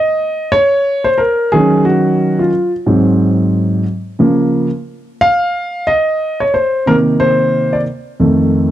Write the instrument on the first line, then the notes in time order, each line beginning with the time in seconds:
grand piano
Already playing: D#5
0.52 C#5
1.04 C5
1.18 A#4
1.52 D#3 F#3 C#4 G#4
1.85 F#4
2.39 F4
2.86 G#2 F#3 C4
4.19 C#3 F3 A#3
5.21 F5
5.87 D#5
6.40 C#5
6.54 C5
6.86 C3 D#3 A#3 A#4
7.20 C5
7.73 D5
8.20 F2 D#3 A3